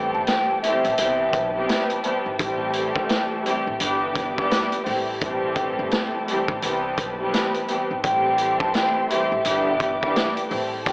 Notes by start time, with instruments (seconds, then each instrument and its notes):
Already playing: upright bass A1, string section E3 G3 A3 C4 G4 A4 E5 G5 A5, flute G5
0.13 upright bass G1, flute A5
0.27 flute G5, snare, closed hi-hat
0.62 string section E3 G3 A3 C4 G4, flute E5, closed hi-hat
0.84 upright bass A1, closed hi-hat
0.97 upright bass C2, string section E3 G3 B3 C4 G4 B4, closed hi-hat
1.33 upright bass B1, kick, closed hi-hat
1.55 string section E3 G3 B3 C4 G4
1.69 snare, closed hi-hat
1.90 closed hi-hat
2.04 string section E3 G3 B3 C4 G4, closed hi-hat
2.26 upright bass G#1
2.39 upright bass A1, string section E3 G3 A3 C4 G4 A4, kick, closed hi-hat
2.73 closed hi-hat
2.96 upright bass C2, kick
3.09 snare, closed hi-hat
3.44 string section E3 G3 A3 C4 G4, closed hi-hat
3.67 upright bass A1
3.79 upright bass G1, string section E3 G3 B3 D4 G4 B4 D6, closed hi-hat
4.15 upright bass G1, kick, closed hi-hat
4.37 string section E3 G3 B3 D4 G4, kick
4.51 snare, closed hi-hat
4.72 closed hi-hat
4.85 upright bass A1, string section E3 G3 A3 C4 G4 A4 A5, open hi-hat
5.21 string section E3 G3 A3 C4 G4, kick, closed hi-hat
5.56 kick, closed hi-hat
5.79 upright bass G1
5.91 snare, closed hi-hat
6.27 string section E3 G3 A3 C4 G4, closed hi-hat
6.48 upright bass A1, kick
6.62 upright bass C2, string section E3 G3 B3 C4 G4 B4, closed hi-hat
6.97 upright bass B1, kick, closed hi-hat
7.19 string section E3 G3 B3 C4 G4
7.34 snare, closed hi-hat
7.54 closed hi-hat
7.68 string section E3 G3 B3 C4 G4, closed hi-hat
7.91 upright bass G#1
8.02 upright bass A1, string section E3 G3 A3 C4 G4 A4 E5 G5 C6, flute G5, kick, closed hi-hat
8.38 closed hi-hat
8.60 upright bass C2, flute A5, kick
8.74 flute G5, snare, closed hi-hat
9.09 string section E3 G3 A3 C4 G4, flute E5, closed hi-hat
9.32 upright bass A1
9.44 upright bass G1, string section E3 G3 B3 D4 G4 B4 D6, closed hi-hat
9.80 upright bass G1, kick, closed hi-hat
10.01 string section E3 G3 B3 D4 G4, kick
10.16 snare, closed hi-hat
10.37 closed hi-hat
10.49 upright bass A1, string section E3 G3 A3 C4 G4 A4 E5 A5, open hi-hat
10.86 string section E3 G3 A3 C4 G4, flute G5, kick, closed hi-hat